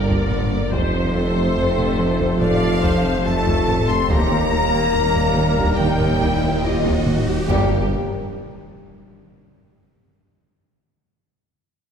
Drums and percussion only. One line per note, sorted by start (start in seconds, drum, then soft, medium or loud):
0.09 taiko medium
0.31 taiko low-mid medium
0.73 taiko medium
1.79 taiko low-mid medium
2.20 taiko medium
2.42 taiko low-mid medium
2.63 taiko low-mid medium
2.84 taiko medium
3.47 taiko medium
3.68 taiko low-mid medium
4.10 taiko loud
5.16 taiko low-mid medium
5.58 taiko medium
5.79 taiko low-mid medium
6.01 taiko low-mid medium
6.21 taiko medium
6.85 taiko medium
7.06 taiko low-mid medium
7.49 taiko low medium